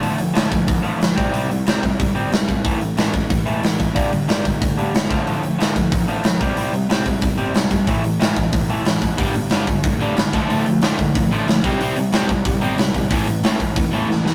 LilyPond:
<<
  \new Staff \with { instrumentName = "Overdriven electric guitar" } { \clef bass \time 4/4 \key a \minor \tempo 4 = 184 <d f a>8 <d f>8 <d f a>8 <d f>8 <d f>8 <d f a>8 <d f>8 <c g c'>8 | <c g c'>8 <c g>8 <c g c'>8 <c g>8 <c g>8 <c g c'>8 <c g>8 <c g>8 | <a, e a>8 <a, e>8 <a, e a>8 <a, e>8 <a, e>8 <a, e a>8 <a, e>8 <a, e>8 | <g, d g>8 <g, d>8 <g, d g>8 <g, d>8 <g, d>8 <g, d g>8 <g, d>8 <d f a>8 |
<d f a>8 <d f>8 <d f a>8 <d f>8 <d f>8 <d f a>8 <d f>8 <c g c'>8 | <c g c'>8 <c g>8 <c g c'>8 <c g>8 <c g>8 <c g c'>8 <c g>8 <c g>8 | <a, e a>8 <a, e>8 <a, e a>8 <a, e>8 <a, e>8 <a, e a>8 <a, e>8 <a, e>8 | <g, d g>8 <g, d>8 <g, d g>8 <g, d>8 <g, d>8 <g, d g>8 <g, d>8 <d f a>8 |
<d f a>8 <d f>8 <d f a>8 <d f>8 <d f>8 <d f a>8 <d f>8 <c g c'>8 | <c g c'>8 <c g>8 <c g c'>8 <c g>8 <c g>8 <c g c'>8 <c g>8 <c g>8 | <a, e a>8 <a, e>8 <a, e a>8 <a, e>8 <a, e>8 <a, e a>8 <a, e>8 <a, e>8 | }
  \new Staff \with { instrumentName = "Distorted electric guitar" } { \clef bass \time 4/4 \key a \minor r1 | r1 | r1 | r1 |
r1 | r1 | r1 | <g, d g>8 <g, d>8 <g, d g>8 <g, d>8 <g, d>8 <g, d g>8 <g, d>8 <d a d'>8 |
<d a d'>8 <d a>8 <d a d'>8 <d a>8 <d a>8 <d a d'>8 <d a>8 <c g c'>8 | <c g c'>8 <c g>8 <c g c'>8 <c g>8 <c g>8 <c g c'>8 <c g>8 <c g>8 | <a, e a>8 <a, e>8 <a, e a>8 <a, e>8 <a, e>8 <a, e a>8 <a, e>8 <a, e>8 | }
  \new Staff \with { instrumentName = "Picked electric bass" } { \clef bass \time 4/4 \key a \minor d,8 d,8 d,8 d,8 a,,4 d,8 c,8 | c,8 c,8 c,8 c,8 g,,4 c,8 g,8 | a,,8 a,,8 a,,8 a,,8 e,,4 a,,8 e,8 | g,,8 g,,8 g,,8 g,,8 d,4 g,,8 d,8 |
d,8 d,8 d,8 d,8 a,,4 b,,8 c,8 | c,8 c,8 c,8 c,8 g,,4 c,8 g,8 | a,,8 a,,8 a,,8 a,,8 e,,4 a,,8 e,8 | g,,8 g,,8 g,,8 g,,8 d,4 g,,8 d,8 |
d,8 d,8 d,8 d,8 a,,4 d,8 c,8 | c,8 c,8 c,8 c,8 g,,4 c,8 g,,8 | a,,8 a,,8 a,,8 a,,8 e,,4 a,,8 e,8 | }
  \new DrumStaff \with { instrumentName = "Drums" } \drummode { \time 4/4 hho8 hho8 <hho sn>8 <hho bd>8 <hho bd>8 hho8 <hho sn>8 <hho bd>8 | hho8 hho8 <hho sn>8 <hho bd>8 <hho bd>8 hho8 <hho sn>8 <hho bd>8 | <hho bd>8 hho8 <hho sn>8 <hho bd>8 <hho bd>8 hho8 <hho sn>8 <hho bd>8 | <hho bd>8 hho8 <hho sn>8 <hho bd>8 <hho bd>8 hho8 <hho sn>8 <hho bd>8 |
hho8 hho8 <hho sn>8 <hho bd>8 <hho bd>8 hho8 <hho sn>8 <hho bd>8 | hho8 hho8 <hho sn>8 <hho bd>8 <hho bd>8 hho8 <hho sn>8 <hho bd>8 | <hho bd>8 hho8 <hho sn>8 <hho bd>8 <hho bd>8 hho8 <hho sn>8 <hho bd>8 | <hho bd>8 hho8 <hho sn>8 <hho bd>8 <hho bd>8 hho8 <hho sn>8 <hho bd>8 |
hho8 hho8 <hho sn>8 <hho bd>8 <hho bd>8 hho8 <hho sn>8 <hho bd>8 | hho8 hho8 <hho sn>8 <hho bd>8 <hho bd>8 hho8 <hho sn>8 <hho bd>8 | <hho bd>8 hho8 <hho sn>8 <hho bd>8 <hho bd>8 hho8 sn8 sn8 | }
>>